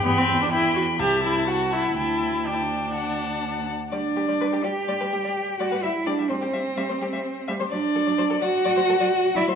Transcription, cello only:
\new Staff \with { instrumentName = "Cello" } { \time 4/4 \key g \major \tempo 4 = 127 e,2 c,2 | d,2.~ d,8 r8 | d'4. g'2 fis'8 | e'8 d'8 c'2~ c'8 r8 |
d'4. fis'2 e'8 | }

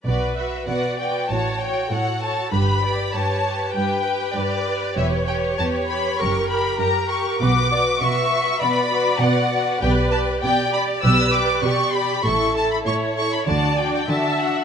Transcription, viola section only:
\new Staff \with { instrumentName = "Viola section" } { \time 4/4 \key b \minor \tempo 4 = 98 b'4 d''4 cis''4 a'4 | b'8 d''8 cis''4 b'2 | cis''2 ais'2 | b'8 d''8 e''4 d''2 |
\key g \lydian b'4 d''4 b'4 g'4 | a'4 cis''4 d''4 e''4 | }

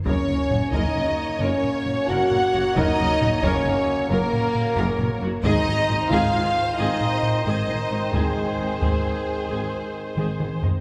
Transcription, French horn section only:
\new Staff \with { instrumentName = "French horn section" } { \time 12/8 \key ges \lydian \tempo 4. = 89 des'4. ees'4. des'4. ges'4. | ees'4. des'4. bes2~ bes8 r8 | ees'4. f'4. ees'4. ees'4. | aes1~ aes4. r8 | }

